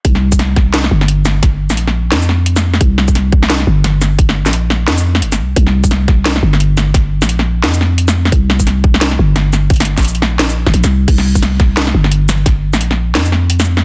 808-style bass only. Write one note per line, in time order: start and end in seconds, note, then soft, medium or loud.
0.05 0.90 C2 loud
0.91 1.72 G1 medium
1.70 2.14 A#1 medium
2.12 2.80 F2 medium
2.81 3.66 C2 loud
3.67 4.47 G1 medium
4.46 4.89 A#1 medium
4.87 5.23 F2 loud
5.22 5.41 G1 medium
5.39 5.55 C2 loud
5.57 6.42 C2 medium
6.43 7.24 G1 loud
7.22 7.65 A#1 medium
7.64 8.32 F2 loud
8.32 9.18 C2 medium
9.19 9.99 G1 loud
9.97 10.65 A#1 medium
10.67 10.73 G1 loud
10.74 10.83 A#1 medium
10.84 11.07 C2 medium
11.08 11.93 C2 loud
11.94 12.75 G1 loud
12.74 13.17 A#1 medium
13.15 13.83 F2 loud